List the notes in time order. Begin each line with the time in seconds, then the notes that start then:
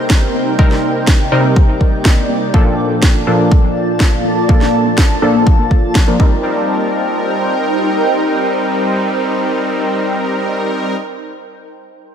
Already playing: C3 G3 A#3 C4 D#4 A#4 C5 G5
0.10 kick, snare
0.34 high conga
0.59 C3 G3 C4 D#4 A#4 D5, kick
0.71 snare
1.07 kick, snare
1.32 C3 G3 C4 D#4 A#4
1.56 kick
1.81 kick
2.05 kick, snare
2.29 high conga
2.54 A#2 F3 A#3 D4 F4 A4 A5, kick
3.02 kick, snare
3.27 A#2 F3 A#3 D4 A4
3.51 kick
4.00 kick, snare
4.25 high conga
4.49 A#2 F3 A#3 D4 A4, kick
4.61 snare
4.86 high conga
4.98 kick, snare
5.22 A#2 F3 A#3 D4 A4
5.35 high conga
5.47 kick
5.59 high conga
5.71 kick
5.95 kick, snare
6.08 A#2 F3 A#3 D4 A#4
6.20 G3 C4 D#4 A#4 C5 G5, kick, high conga